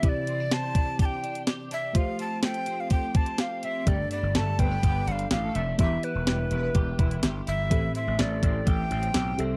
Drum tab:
HH |x-x-x-x-x-xxx-x-|x-x-xxx-x-xxx-x-|x-x-x-x-x-xxx-x-|x-x-x-x-x-xxx-x-|
SD |----o-------o---|----o-------o---|----o-------o---|----o-------o---|
BD |o-----o-o-------|o-------o-o-----|o-----o-o-------|o-------o-o-----|

HH |x-x-x-x-x-xxx-x-|
SD |----o-------o---|
BD |o-----o-o-------|